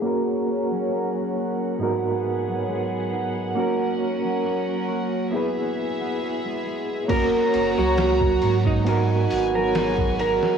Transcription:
<<
  \new Staff \with { instrumentName = "Electric slide guitar" } { \time 4/4 \key fis \mixolydian \tempo 4 = 68 r1 | r1 | ais'8. fis'4 dis'4 ais'8. ais'8 | }
  \new Staff \with { instrumentName = "Violin section" } { \time 4/4 \key fis \mixolydian << { fis''1~ | fis''2 e''2 | ais''2 gis''2 | } \\ { <cis' ais'>2 <b gis'>2 | <cis' ais'>2 <b gis'>2 | <fis' cis''>2 <b fis'>2 | } >> }
  \new Staff \with { instrumentName = "Reed electric piano" } { \time 4/4 \key fis \mixolydian <ais cis' fis' ais'>2 <gis, b dis' fis' ais'>2 | <ais cis' fis' ais'>2 <b e' gis' b'>2 | <ais cis' fis' ais'>2 <b dis' fis' ais'>2 | }
  \new Staff \with { instrumentName = "Harp" } { \time 4/4 \key fis \mixolydian r8. fis16 ais16 cis'16 fis'8 r8. fis16 gis16 b16 dis'8 | r8. fis16 ais16 cis'16 fis'8 r8 b16 b16 e''16 gis16 gis16 r16 | r8. fis16 ais16 cis'16 fis'8 r8. fis16 gis16 b16 dis'8 | }
  \new Staff \with { instrumentName = "Sub bass" } { \clef bass \time 4/4 \key fis \mixolydian r1 | r1 | fis,,16 r16 fis,,16 cis,8. gis,4 gis,,4~ gis,,16 r16 | }
  \new DrumStaff \with { instrumentName = "Drums" } \drummode { \time 4/4 r4 r4 r4 r4 | r4 r4 r4 r4 | <cymc bd cymr>8 cymr8 <cymr sn>16 bd16 cymr16 bd16 cymr8 hho8 <cymr sn>16 bd16 cymr16 sn16 | }
>>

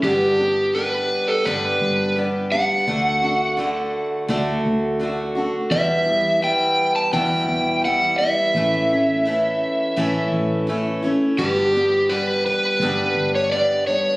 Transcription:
<<
  \new Staff \with { instrumentName = "Electric slide guitar" } { \time 4/4 \key g \lydian \tempo 4 = 85 g'4 b'8. a'16 b'4 r8 fis''8~ | fis''4 r2. | e''4 g''8. a''16 g''4 fis''8 e''8~ | e''2~ e''8 r4. |
g'4 b'8 b'4~ b'16 cis''16 d''8 cis''8 | }
  \new Staff \with { instrumentName = "Steel-string acoustic guitar" } { \time 4/4 \key g \lydian <g, d g b d' g'>8 <g b d' g'>8 <g b d' g'>4 <g, d g b d' g'>4 <g b d' g'>8 <g b d' g'>8 | <d a d' fis'>8 <a d' fis'>8 <d a d' fis'>4 <d a d' fis'>4 <d a d' fis'>8 <a d' fis'>8 | <e, b, e g b e'>8 <e g b e'>8 <e g b e'>4 <e, b, e g b e'>4 <e g b e'>8 <e g b e'>8 | <a, e a cis' e'>8 <a cis' e'>8 <e a cis' e'>4 <a, e a cis' e'>4 <e a cis' e'>8 <a cis' e'>8 |
<g, d g b d' g'>8 <g b d' g'>8 <g b d' g'>4 <g, d g b d' g'>4 <g b d' g'>8 <g b d' g'>8 | }
  \new Staff \with { instrumentName = "Fingered electric bass" } { \clef bass \time 4/4 \key g \lydian g,,2 g,,8 g,,4. | d,2 d,8 d,4. | e,2 e,8 e,4. | a,,2 a,,8 a,,4. |
g,,2 g,,8 g,,4. | }
>>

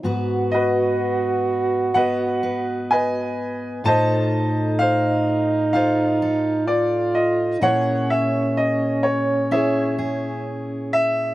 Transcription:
<<
  \new Staff \with { instrumentName = "Upright piano" } { \time 4/4 \key gis \minor \tempo 4 = 64 << { r8 dis''4. fis''4 gis''4 | a''4 f''4 f''4 d''8 ees''8 | fis''8 e''8 dis''8 cis''8 e''4 r8 e''8 | } \\ { r8 <fis' b'>4. <b' dis''>4 <b' dis''>4 | <c'' ees''>4 c''4 c''2 | cis''2 <gis' cis''>2 | } >> }
  \new Staff \with { instrumentName = "Steel-string acoustic guitar" } { \time 4/4 \key gis \minor << { <b fis' b'>2 <b fis' b'>8 b'4. | <ees' f' a'>2 <ees' f' a'>8 a'4. | <cis' e' gis'>2 <cis' e' gis'>8 gis'4. | } \\ { gis,1 | a,1 | ais,1 | } >> }
  \new Staff \with { instrumentName = "French horn" } { \time 4/4 \key gis \minor fis'2.~ fis'8 r8 | ees'2. f'4 | cis'2.~ cis'8 r8 | }
>>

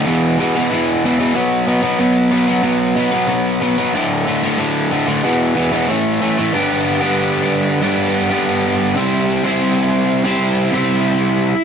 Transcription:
\new Staff \with { instrumentName = "Overdriven electric guitar" } { \clef bass \time 4/4 \key b \minor \tempo 4 = 186 <e, b, e>4 <e, b, e>8 <e, b, e>8 <e, b, e>4 <e, b, e>8 <e, b, e>8 | <b, fis b>4 <b, fis b>8 <b, fis b>8 <b, fis b>4 <b, fis b>8 <b, fis b>8 | <b, fis b>4 <b, fis b>8 <b, fis b>8 <b, fis b>4 <b, fis b>8 <b, fis b>8 | <d, a, d>4 <d, a, d>8 <d, a, d>8 <d, a, d>4 <d, a, d>8 <d, a, d>8 |
<e, b, e>4 <e, b, e>8 <e, b, e>8 <a, e a>4 <a, e a>8 <a, e a>8 | \key g \lydian <g, d g b d' g'>4. <g, d g b d' g'>2~ <g, d g b d' g'>8 | <g, d g b d' g'>4. <g, d g b d' g'>2 <c g c' e' g' c''>8~ | <c g c' e' g' c''>4 <c g c' e' g' c''>2~ <c g c' e' g' c''>8 <c g c' e' g' c''>8~ |
<c g c' e' g' c''>4 <c g c' e' g' c''>2~ <c g c' e' g' c''>8 r8 | }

